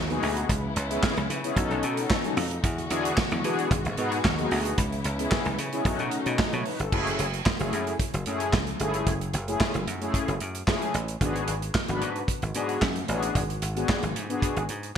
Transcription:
Already playing: D#2 B2 G#3 F#4
0.10 B3 D#4 F#4 G#4, closed hi-hat
0.23 D2, open hi-hat
0.37 closed hi-hat
0.49 C#2 C#3 B3 E4, kick, closed hi-hat
0.76 C#2, closed hi-hat
0.90 B3 C#4 E4 G#4, closed hi-hat
1.03 kick, snare, clap
1.17 C#2, closed hi-hat
1.30 C#3, closed hi-hat
1.44 B3 C#4 E4 G#4, closed hi-hat
1.56 B1 B2 A3 C#4 D#4 F#4 A4, kick, closed hi-hat
1.71 B1, closed hi-hat
1.83 B2, closed hi-hat
1.97 closed hi-hat
2.10 kick, snare, clap
2.24 closed hi-hat
2.37 F2, open hi-hat
2.51 closed hi-hat
2.63 E2 D3 G#3 F#4, kick, closed hi-hat
2.78 F#4 G#4, closed hi-hat
2.90 E2 B3 D4 F#4 G#4, closed hi-hat
3.05 closed hi-hat
3.17 kick, snare, clap
3.31 E2, closed hi-hat
3.44 E3 B3 D4 F#4 G#4, closed hi-hat
3.59 closed hi-hat
3.71 G#1 B2 F#4, kick, closed hi-hat
3.85 G#1, closed hi-hat
3.97 G#2 B3 D#4 F#4 G#4, closed hi-hat
4.12 closed hi-hat
4.24 D#2, kick, snare, clap
4.38 B3 D#4 F#4 G#4, closed hi-hat
4.51 D2, open hi-hat
4.65 closed hi-hat
4.78 C#2 C#3 B3 E4, kick, closed hi-hat
4.92 closed hi-hat
5.04 C#2, closed hi-hat
5.19 B3 C#4 E4 G#4, closed hi-hat
5.31 kick, snare, clap
5.45 C#2, closed hi-hat
5.59 C#3, closed hi-hat
5.72 B3 C#4 E4 G#4, closed hi-hat
5.85 B1 B2 A3 C#4 D#4 F#4, kick, closed hi-hat
5.99 B2, closed hi-hat
6.11 closed hi-hat
6.26 B2, closed hi-hat
6.39 F#4 D#5, kick, snare, clap
6.53 B2 C#5, closed hi-hat
6.65 D#4 B4, open hi-hat
6.80 G1 C#4 A4, closed hi-hat
6.92 F#1 A3 C#4 E4 G#4, kick, crash
7.07 closed hi-hat
7.19 F#1, closed hi-hat
7.34 closed hi-hat
7.46 kick, snare, clap
7.59 F#1 A3 C#4 E4 G#4, closed hi-hat
7.73 F#2, closed hi-hat
7.87 closed hi-hat
7.99 kick, closed hi-hat
8.14 F#1, closed hi-hat
8.26 F#2 A3 C#4 E4 G#4, closed hi-hat
8.40 closed hi-hat
8.53 C#2, kick, snare, clap
8.67 closed hi-hat
8.80 G1 A3 C#4 E4 G#4, closed hi-hat
8.94 closed hi-hat
9.07 F#1, kick, closed hi-hat
9.21 closed hi-hat
9.34 F#1, closed hi-hat
9.48 A3 C#4 E4 G#4, closed hi-hat
9.60 kick, snare, clap
9.74 F#1, closed hi-hat
9.87 F#2, closed hi-hat
10.01 A3 C#4 E4 G#4, closed hi-hat
10.14 kick, closed hi-hat
10.28 F#1, closed hi-hat
10.40 F#2, closed hi-hat
10.55 closed hi-hat
10.67 A3 C#4 E4 G#4, kick, snare, clap
10.82 closed hi-hat
10.94 A1, closed hi-hat
11.08 closed hi-hat
11.21 G#1 B3 D4 F#4 G#4, kick, closed hi-hat
11.36 closed hi-hat
11.48 G#1, closed hi-hat
11.62 closed hi-hat
11.74 kick, snare, clap
11.88 G#1 B3 D4 F#4 B4, closed hi-hat
12.01 G#2, closed hi-hat
12.16 closed hi-hat
12.28 kick, closed hi-hat
12.42 G#1, closed hi-hat
12.55 G#2 B3 D4 F#4 G#4, closed hi-hat
12.69 closed hi-hat
12.82 F#2, kick, snare, clap
12.96 closed hi-hat
13.08 A1 B3 D4 F#4 G#4, closed hi-hat
13.23 closed hi-hat
13.35 G#1, kick, closed hi-hat
13.50 closed hi-hat
13.62 G#1, closed hi-hat
13.76 B3 D4 F#4 G#4, closed hi-hat
13.89 kick, snare, clap
14.03 G#1, closed hi-hat
14.16 G#2, closed hi-hat
14.29 B3 D4 F#4 G#4, closed hi-hat
14.42 kick, closed hi-hat
14.57 G#1, closed hi-hat
14.69 G#2, closed hi-hat
14.83 closed hi-hat

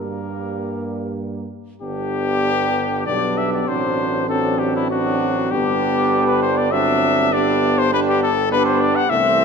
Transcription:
Already playing: G2 G3 A#3 A#4
1.82 G1 G3 B3 D4 G4
3.06 B1 G3 B3 D4 D5
3.37 E5
3.53 D5
3.68 A1 F#3 C4 D4 C5
4.29 F#3 C4 D4 A4
4.59 G4
4.76 E4
4.90 F#3 C4 D4 F#4
5.51 G1 G3 B3 D4 G4
6.27 B4
6.42 C5
6.58 D5
6.71 F#3 C4 D4 E5
7.32 G3 B3 D4 D5
7.78 C5
7.92 G3 B3 D4 B4
8.09 G4
8.23 A4
8.51 G3 B3 D4 B4
8.65 C5
8.81 D5
8.96 F#5
9.09 C2 E3 A3 C4 E5

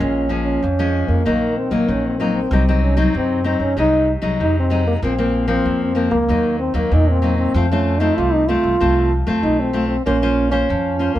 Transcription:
Already playing: G#3 C#4 F4
0.00 A#1 A#2 C#4
0.29 F3 G#3 C#4
0.45 C#4
0.62 F2
0.79 F3 G#3 C#4
1.08 F2 A#3
1.25 A#1 D#3 F#3 A#3 D#4
1.57 C4
1.71 A#1 F#3 A#3 D#4
1.88 A#1 D#3 C#4
2.06 C4
2.20 F#3 A#3 D#4
2.34 C4
2.51 C2 C3 F#3 C4 D#4
2.68 F#3 C4 D#4
2.83 C#4
2.97 F#3 C4 D#4
3.14 F#2 C3 C4
3.44 F#3 C4 D#4
3.60 F#2 C#4
3.77 C2 C3 F#3 G#3 D#4
4.22 C2 F#3 G#3 D#4
4.40 F2 C3 D#4
4.59 C4
4.70 F#3 G#3 D#4
4.88 A#3
5.02 A#1 A#2 F3 A#3 C4
5.18 F3 A#3 C4
5.48 F3 A#3 C4
5.65 F2
5.84 C4
5.95 F3 A#3 C4
6.11 C#2 A#3
6.29 D#2 D#3 F#3 A#3 D#4
6.60 C4
6.74 D#2 F#3 A#3 D#4
6.91 E2 A#2 D#4
7.10 C4
7.22 F#3 A#3 D#4
7.39 C4
7.54 F2 F3 A3 C4 F4
7.72 A3 C4 C#4 F4
8.00 A3 C4 D#4 F4
8.18 C2 C3 F4
8.33 D#4
8.48 A3 C4 F4
8.63 C2
8.80 C2 F3 A3 C4 F4
9.27 F2 A3 C4 F4
9.43 B1 D#4
9.60 C4
9.73 A3 C4 F4
9.88 C4
10.06 A#1 A#3 C#4 F4 C5
10.22 C#4 F4 C5
10.51 C#4 F4 C5
10.69 F2 F3
10.99 C#4 F4 C5
11.15 F2 A#3

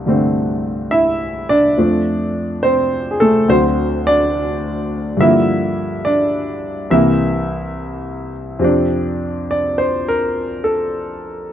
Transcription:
Already playing: C2 G2 E3 A3 A#3 D4 A4 A5
0.06 G2 D3 G3 A3 C4
0.91 E4 E5
1.49 D4 D5
1.78 F2 F3 A3 D4
2.63 C4 C5
3.11 G#4
3.20 A3 A4
3.48 D2 D3 F#3 C4 C5
4.07 D4 D5
5.17 G2 D3 F3 E5
5.22 A#3 E4
6.05 D4 D5
6.91 C2 C3 E3 A#3 E4 E5
8.59 F2 C3 C4
8.64 D4
9.51 D5
9.78 C5
10.08 A#4
10.64 A4

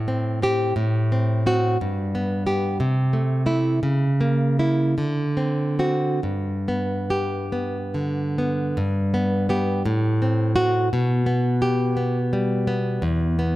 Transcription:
Already playing: A2
0.08 C4
0.42 C4 G4
0.76 A2
1.12 C4
1.46 C4 F#4
1.81 G2
2.15 B3
2.46 B3 G4
2.80 C3
3.13 A3
3.46 A3 E4
3.83 C#3
4.21 A#3
4.59 A#3 E4
4.98 D3
5.37 C4
5.79 C4 F#4
6.23 G2
6.68 B3
7.10 G4
7.52 B3
7.94 D3
8.38 B3
8.77 G2
9.14 B3
9.49 B3 G4
9.86 A2
10.22 C4
10.56 C4 F#4
10.93 B2
11.26 B3
11.62 G4
11.97 B3
12.33 G3
12.67 B3
13.02 E2
13.39 B3

